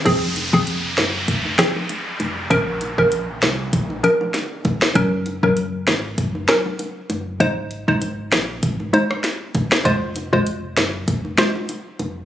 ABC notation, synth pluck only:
X:1
M:4/4
L:1/16
Q:"Swing 16ths" 1/4=98
K:Fphr
V:1 name="Synth pluck"
[F,CA]3 [F,CA] z6 [F,CA] z4 z | [F,DB]3 [F,DB] z6 [F,DB] z4 z | [G,DB]3 [G,DB] z6 [G,DB] z4 z | [A,Ec]3 [A,Ec] z6 [A,Ec] z4 z |
[A,Fc]3 [A,Fc] z6 [A,Fc] z4 z |]